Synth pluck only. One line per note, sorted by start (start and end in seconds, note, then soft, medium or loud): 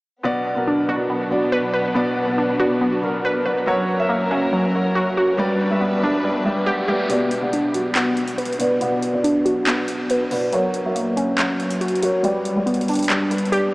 0.24 1.09 B3 medium
0.67 1.96 D4 medium
0.89 2.17 F#4 medium
1.10 1.94 B3 medium
1.52 1.72 B4 loud
1.74 3.02 B4 medium
1.95 2.80 B3 medium
2.38 3.67 D4 medium
2.60 3.67 F#4 loud
2.81 3.67 B3 medium
3.25 3.44 B4 medium
3.46 3.67 B4 medium
3.67 4.52 F#3 medium
4.09 5.38 A#3 medium
4.31 5.38 C#4 medium
4.53 5.38 F#3 medium
4.95 5.16 F#4 medium
5.17 5.39 F#4 medium
5.39 6.23 G3 medium
5.81 7.09 B3 medium
6.03 7.10 D4 loud
6.24 7.10 G3 medium
6.66 6.87 G4 loud
6.88 7.10 G4 medium
7.10 7.94 B3 medium
7.53 8.81 D4 medium
7.74 9.03 F#4 loud
7.96 8.80 B3 medium
8.38 8.58 B4 loud
8.59 9.88 B4 medium
8.81 9.66 B3 medium
9.24 10.52 D4 medium
9.45 10.53 F#4 loud
9.67 10.53 B3 medium
10.11 10.30 B4 loud
10.31 10.53 B4 medium
10.53 11.37 F#3 medium
10.95 12.24 A#3 medium
11.17 12.24 C#4 medium
11.39 12.24 F#3 medium
11.81 12.02 F#4 medium
12.03 12.24 F#4 medium
12.24 13.09 G3 medium
12.66 13.74 B3 medium
12.89 13.74 D4 loud
13.10 13.74 G3 medium
13.52 13.73 G4 loud